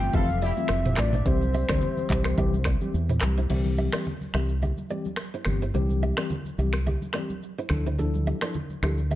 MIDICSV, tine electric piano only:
0, 0, Header, 1, 2, 480
1, 0, Start_track
1, 0, Key_signature, 0, "major"
1, 0, Tempo, 560748
1, 1075, Time_signature, 4, 2, 24, 8
1, 7837, End_track
2, 0, Start_track
2, 0, Title_t, "Tine electric piano"
2, 0, Program_c, 0, 4
2, 0, Note_on_c, 0, 52, 74
2, 0, Note_on_c, 0, 57, 67
2, 0, Note_on_c, 0, 60, 72
2, 0, Note_on_c, 0, 65, 83
2, 97, Note_off_c, 0, 52, 0
2, 98, Note_off_c, 0, 57, 0
2, 100, Note_off_c, 0, 60, 0
2, 100, Note_off_c, 0, 65, 0
2, 112, Note_on_c, 0, 52, 99
2, 115, Note_on_c, 0, 57, 89
2, 117, Note_on_c, 0, 60, 85
2, 118, Note_on_c, 0, 65, 108
2, 253, Note_off_c, 0, 52, 0
2, 254, Note_off_c, 0, 57, 0
2, 255, Note_off_c, 0, 60, 0
2, 256, Note_off_c, 0, 65, 0
2, 484, Note_on_c, 0, 52, 84
2, 485, Note_on_c, 0, 57, 75
2, 488, Note_on_c, 0, 60, 74
2, 490, Note_on_c, 0, 65, 89
2, 602, Note_off_c, 0, 52, 0
2, 603, Note_off_c, 0, 57, 0
2, 604, Note_off_c, 0, 60, 0
2, 605, Note_off_c, 0, 65, 0
2, 834, Note_on_c, 0, 52, 78
2, 835, Note_on_c, 0, 57, 68
2, 836, Note_on_c, 0, 60, 68
2, 838, Note_on_c, 0, 65, 82
2, 974, Note_off_c, 0, 52, 0
2, 974, Note_off_c, 0, 57, 0
2, 975, Note_off_c, 0, 60, 0
2, 975, Note_off_c, 0, 65, 0
2, 1071, Note_on_c, 0, 52, 93
2, 1073, Note_on_c, 0, 55, 85
2, 1076, Note_on_c, 0, 60, 86
2, 1077, Note_on_c, 0, 67, 105
2, 1212, Note_off_c, 0, 52, 0
2, 1213, Note_off_c, 0, 55, 0
2, 1215, Note_off_c, 0, 60, 0
2, 1215, Note_off_c, 0, 67, 0
2, 1443, Note_on_c, 0, 52, 74
2, 1446, Note_on_c, 0, 55, 68
2, 1448, Note_on_c, 0, 60, 67
2, 1449, Note_on_c, 0, 67, 82
2, 1767, Note_off_c, 0, 52, 0
2, 1769, Note_off_c, 0, 55, 0
2, 1770, Note_off_c, 0, 60, 0
2, 1770, Note_off_c, 0, 67, 0
2, 1794, Note_on_c, 0, 52, 74
2, 1796, Note_on_c, 0, 55, 69
2, 1798, Note_on_c, 0, 60, 71
2, 1801, Note_on_c, 0, 67, 84
2, 2017, Note_off_c, 0, 52, 0
2, 2019, Note_off_c, 0, 55, 0
2, 2019, Note_off_c, 0, 60, 0
2, 2021, Note_off_c, 0, 67, 0
2, 2034, Note_on_c, 0, 52, 89
2, 2037, Note_on_c, 0, 55, 87
2, 2038, Note_on_c, 0, 60, 86
2, 2039, Note_on_c, 0, 67, 104
2, 2174, Note_off_c, 0, 52, 0
2, 2175, Note_off_c, 0, 55, 0
2, 2175, Note_off_c, 0, 60, 0
2, 2176, Note_off_c, 0, 67, 0
2, 2406, Note_on_c, 0, 52, 80
2, 2407, Note_on_c, 0, 55, 70
2, 2411, Note_on_c, 0, 60, 74
2, 2411, Note_on_c, 0, 67, 90
2, 2523, Note_off_c, 0, 52, 0
2, 2524, Note_off_c, 0, 55, 0
2, 2526, Note_off_c, 0, 60, 0
2, 2526, Note_off_c, 0, 67, 0
2, 2755, Note_on_c, 0, 52, 76
2, 2755, Note_on_c, 0, 55, 68
2, 2758, Note_on_c, 0, 60, 68
2, 2759, Note_on_c, 0, 67, 84
2, 2894, Note_off_c, 0, 52, 0
2, 2894, Note_off_c, 0, 55, 0
2, 2896, Note_off_c, 0, 60, 0
2, 2896, Note_off_c, 0, 67, 0
2, 2995, Note_on_c, 0, 52, 88
2, 2995, Note_on_c, 0, 55, 83
2, 2998, Note_on_c, 0, 60, 81
2, 2999, Note_on_c, 0, 67, 103
2, 3335, Note_off_c, 0, 52, 0
2, 3336, Note_off_c, 0, 55, 0
2, 3337, Note_off_c, 0, 60, 0
2, 3337, Note_off_c, 0, 67, 0
2, 3365, Note_on_c, 0, 52, 73
2, 3368, Note_on_c, 0, 55, 66
2, 3369, Note_on_c, 0, 60, 66
2, 3371, Note_on_c, 0, 67, 79
2, 3483, Note_off_c, 0, 52, 0
2, 3484, Note_off_c, 0, 55, 0
2, 3485, Note_off_c, 0, 60, 0
2, 3486, Note_off_c, 0, 67, 0
2, 3714, Note_on_c, 0, 52, 71
2, 3715, Note_on_c, 0, 55, 66
2, 3718, Note_on_c, 0, 60, 66
2, 3720, Note_on_c, 0, 67, 75
2, 3854, Note_off_c, 0, 52, 0
2, 3854, Note_off_c, 0, 55, 0
2, 3856, Note_off_c, 0, 60, 0
2, 3857, Note_off_c, 0, 67, 0
2, 4196, Note_on_c, 0, 52, 77
2, 4196, Note_on_c, 0, 55, 71
2, 4199, Note_on_c, 0, 60, 68
2, 4201, Note_on_c, 0, 67, 89
2, 4335, Note_off_c, 0, 52, 0
2, 4335, Note_off_c, 0, 55, 0
2, 4336, Note_off_c, 0, 60, 0
2, 4337, Note_off_c, 0, 67, 0
2, 4678, Note_on_c, 0, 52, 74
2, 4679, Note_on_c, 0, 55, 68
2, 4681, Note_on_c, 0, 60, 68
2, 4682, Note_on_c, 0, 67, 84
2, 4816, Note_off_c, 0, 52, 0
2, 4816, Note_off_c, 0, 55, 0
2, 4817, Note_off_c, 0, 60, 0
2, 4818, Note_off_c, 0, 67, 0
2, 4917, Note_on_c, 0, 52, 90
2, 4917, Note_on_c, 0, 55, 82
2, 4919, Note_on_c, 0, 60, 82
2, 4921, Note_on_c, 0, 67, 106
2, 5256, Note_off_c, 0, 52, 0
2, 5256, Note_off_c, 0, 55, 0
2, 5258, Note_off_c, 0, 60, 0
2, 5259, Note_off_c, 0, 67, 0
2, 5288, Note_on_c, 0, 52, 73
2, 5290, Note_on_c, 0, 55, 65
2, 5292, Note_on_c, 0, 60, 65
2, 5293, Note_on_c, 0, 67, 78
2, 5404, Note_off_c, 0, 52, 0
2, 5405, Note_off_c, 0, 55, 0
2, 5406, Note_off_c, 0, 60, 0
2, 5406, Note_off_c, 0, 67, 0
2, 5635, Note_on_c, 0, 52, 75
2, 5636, Note_on_c, 0, 55, 65
2, 5638, Note_on_c, 0, 60, 67
2, 5640, Note_on_c, 0, 67, 81
2, 5774, Note_off_c, 0, 52, 0
2, 5774, Note_off_c, 0, 55, 0
2, 5776, Note_off_c, 0, 60, 0
2, 5777, Note_off_c, 0, 67, 0
2, 6113, Note_on_c, 0, 52, 76
2, 6115, Note_on_c, 0, 55, 71
2, 6117, Note_on_c, 0, 60, 74
2, 6119, Note_on_c, 0, 67, 85
2, 6253, Note_off_c, 0, 52, 0
2, 6254, Note_off_c, 0, 55, 0
2, 6255, Note_off_c, 0, 60, 0
2, 6256, Note_off_c, 0, 67, 0
2, 6594, Note_on_c, 0, 53, 71
2, 6595, Note_on_c, 0, 62, 66
2, 6597, Note_on_c, 0, 64, 69
2, 6599, Note_on_c, 0, 69, 81
2, 6734, Note_off_c, 0, 53, 0
2, 6734, Note_off_c, 0, 62, 0
2, 6735, Note_off_c, 0, 64, 0
2, 6736, Note_off_c, 0, 69, 0
2, 6835, Note_on_c, 0, 53, 91
2, 6837, Note_on_c, 0, 62, 86
2, 6838, Note_on_c, 0, 64, 82
2, 6841, Note_on_c, 0, 69, 97
2, 7176, Note_off_c, 0, 53, 0
2, 7176, Note_off_c, 0, 62, 0
2, 7177, Note_off_c, 0, 64, 0
2, 7178, Note_off_c, 0, 69, 0
2, 7206, Note_on_c, 0, 53, 72
2, 7208, Note_on_c, 0, 62, 69
2, 7209, Note_on_c, 0, 64, 66
2, 7212, Note_on_c, 0, 69, 80
2, 7323, Note_off_c, 0, 53, 0
2, 7324, Note_off_c, 0, 62, 0
2, 7325, Note_off_c, 0, 64, 0
2, 7326, Note_off_c, 0, 69, 0
2, 7557, Note_on_c, 0, 53, 72
2, 7558, Note_on_c, 0, 62, 65
2, 7560, Note_on_c, 0, 64, 69
2, 7562, Note_on_c, 0, 69, 80
2, 7695, Note_off_c, 0, 53, 0
2, 7696, Note_off_c, 0, 62, 0
2, 7696, Note_off_c, 0, 64, 0
2, 7698, Note_off_c, 0, 69, 0
2, 7837, End_track
0, 0, End_of_file